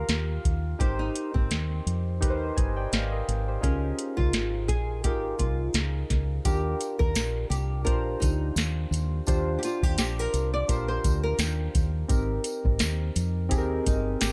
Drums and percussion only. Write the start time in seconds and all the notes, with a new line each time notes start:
0.09 snare, closed hi-hat
0.45 kick, closed hi-hat
0.80 kick, closed hi-hat
1.16 closed hi-hat
1.36 kick
1.51 snare, closed hi-hat
1.87 closed hi-hat
2.22 kick, closed hi-hat
2.57 kick, closed hi-hat
2.93 snare, closed hi-hat
3.29 closed hi-hat
3.63 kick, closed hi-hat
3.99 closed hi-hat
4.18 kick
4.33 snare, closed hi-hat
4.69 kick, closed hi-hat
5.04 kick, closed hi-hat
5.39 kick, closed hi-hat
5.74 snare, closed hi-hat
6.10 kick, snare, closed hi-hat
6.45 kick, closed hi-hat, tambourine
6.81 closed hi-hat, tambourine
7.00 kick
7.15 snare, closed hi-hat, tambourine
7.51 closed hi-hat, tambourine
7.87 kick, closed hi-hat
8.22 kick, closed hi-hat, tambourine
8.56 snare, closed hi-hat, tambourine
8.92 closed hi-hat, tambourine
9.27 kick, closed hi-hat, tambourine
9.63 closed hi-hat, tambourine
9.83 kick
9.98 snare, closed hi-hat, tambourine
10.34 closed hi-hat, tambourine
10.69 kick, closed hi-hat, tambourine
11.04 kick, closed hi-hat, tambourine
11.39 snare, closed hi-hat, tambourine
11.75 kick, closed hi-hat, tambourine
12.09 kick, closed hi-hat, tambourine
12.44 closed hi-hat, tambourine
12.65 kick
12.79 snare, closed hi-hat, tambourine
13.16 closed hi-hat, tambourine
13.51 kick, closed hi-hat, tambourine
13.86 kick, closed hi-hat, tambourine
14.21 snare, closed hi-hat, tambourine